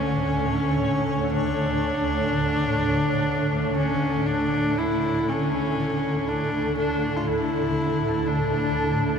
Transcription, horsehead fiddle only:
0, 0, Header, 1, 2, 480
1, 0, Start_track
1, 0, Tempo, 978793
1, 637, Time_signature, 4, 2, 24, 8
1, 1601, Tempo, 991736
1, 4468, End_track
2, 0, Start_track
2, 0, Title_t, "Horsehead fiddle"
2, 0, Program_c, 0, 110
2, 0, Note_on_c, 0, 61, 79
2, 640, Note_on_c, 0, 62, 89
2, 647, Note_off_c, 0, 61, 0
2, 1843, Note_off_c, 0, 62, 0
2, 1848, Note_on_c, 0, 61, 87
2, 2084, Note_on_c, 0, 62, 91
2, 2092, Note_off_c, 0, 61, 0
2, 2338, Note_on_c, 0, 64, 86
2, 2345, Note_off_c, 0, 62, 0
2, 2583, Note_on_c, 0, 61, 83
2, 2590, Note_off_c, 0, 64, 0
2, 3063, Note_on_c, 0, 62, 82
2, 3070, Note_off_c, 0, 61, 0
2, 3294, Note_off_c, 0, 62, 0
2, 3303, Note_on_c, 0, 62, 82
2, 3492, Note_on_c, 0, 65, 62
2, 3499, Note_off_c, 0, 62, 0
2, 3542, Note_on_c, 0, 64, 79
2, 3549, Note_off_c, 0, 65, 0
2, 4029, Note_on_c, 0, 62, 88
2, 4036, Note_off_c, 0, 64, 0
2, 4468, Note_off_c, 0, 62, 0
2, 4468, End_track
0, 0, End_of_file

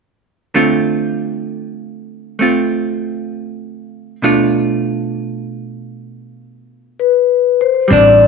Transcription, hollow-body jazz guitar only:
0, 0, Header, 1, 2, 480
1, 0, Start_track
1, 0, Tempo, 920245
1, 289, Time_signature, 4, 2, 24, 8
1, 4316, End_track
2, 0, Start_track
2, 0, Title_t, "Hollow-body jazz guitar"
2, 0, Program_c, 0, 26
2, 284, Note_on_c, 0, 50, 27
2, 286, Note_on_c, 0, 57, 30
2, 290, Note_on_c, 0, 60, 29
2, 291, Note_on_c, 0, 65, 30
2, 1240, Note_off_c, 0, 57, 0
2, 1247, Note_on_c, 0, 57, 26
2, 1251, Note_off_c, 0, 60, 0
2, 1257, Note_off_c, 0, 65, 0
2, 1257, Note_on_c, 0, 60, 27
2, 1263, Note_on_c, 0, 65, 28
2, 2203, Note_on_c, 0, 47, 30
2, 2204, Note_off_c, 0, 57, 0
2, 2205, Note_off_c, 0, 50, 0
2, 2206, Note_off_c, 0, 65, 0
2, 2209, Note_off_c, 0, 60, 0
2, 2209, Note_on_c, 0, 57, 31
2, 2212, Note_on_c, 0, 65, 37
2, 2213, Note_on_c, 0, 62, 32
2, 4107, Note_off_c, 0, 57, 0
2, 4109, Note_on_c, 0, 55, 37
2, 4121, Note_off_c, 0, 62, 0
2, 4122, Note_off_c, 0, 47, 0
2, 4123, Note_on_c, 0, 60, 40
2, 4127, Note_off_c, 0, 65, 0
2, 4133, Note_on_c, 0, 62, 44
2, 4316, Note_off_c, 0, 55, 0
2, 4316, Note_off_c, 0, 60, 0
2, 4316, Note_off_c, 0, 62, 0
2, 4316, End_track
0, 0, End_of_file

